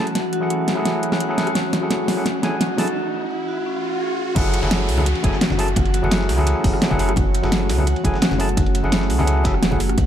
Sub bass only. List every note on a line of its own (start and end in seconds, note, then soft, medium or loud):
0.00 0.14 F#1 medium
0.15 0.40 F#1 loud
0.42 0.69 F#1 loud
0.68 0.93 C#2 medium
1.03 1.11 F#1 loud
1.30 1.54 F#1 medium
1.56 1.81 F#1 loud
1.82 2.10 F#1 loud
2.08 2.34 C#2 loud
4.36 4.62 F#1 loud
4.63 4.90 F#1 loud
4.89 5.14 C#2 medium
5.24 5.32 F#1 loud
5.51 5.75 F#1 medium
5.77 6.02 F#1 loud
6.03 6.31 F#1 loud
6.29 6.55 C#2 loud
6.64 6.73 F#1 loud
6.91 7.16 F#1 medium
7.17 7.42 F#1 loud
7.44 7.71 F#1 loud
7.70 7.95 C#2 loud
8.05 8.13 F#1 loud
8.31 8.56 F#1 medium
8.57 8.83 F#1 loud
8.84 9.11 F#1 loud
9.10 9.46 C#2 loud
9.45 9.73 E1 medium
9.72 9.96 F#1 medium
9.98 10.06 A1 loud